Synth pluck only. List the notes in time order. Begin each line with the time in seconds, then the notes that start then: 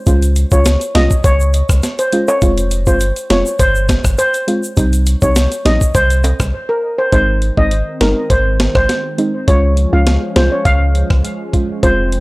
0.06 G#3 C#4 F4
0.51 G#3 C#4 F4
0.95 G#3 C#4 F4
2.13 G#3 C#4 F4
2.42 G#3 C4 F4
2.87 G#3 C4 F4
3.30 G#3 C4 F4
4.48 G#3 C4 F4
4.77 G3 C4 D#4
5.22 G3 C4 D#4
5.65 G3 C4 D#4
7.12 G#3 C4 D#4
7.57 G#3 C4 D#4
8.01 G#3 C4 D#4
9.18 G#3 C4 D#4
9.48 G#3 C#4 F4
9.93 G#3 C#4 F4
10.36 G#3 C#4 F4
11.53 G#3 C#4 F4
11.83 G#3 C4 F4